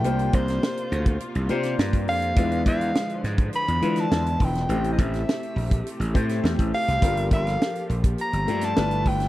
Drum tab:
HH |xxxx-xxxxxxx-xox|xxxx-xxxxxxx-xox|xxxx-xoxxxxx-xox|xxxx-xxxxxxx-xox|
SD |---oo------oo---|----o-o----oo--o|---oo------oo--o|---oo------oo--o|
BD |--o----o-----o--|o-o----o------o-|--o----o--o--o--|o-o----o------o-|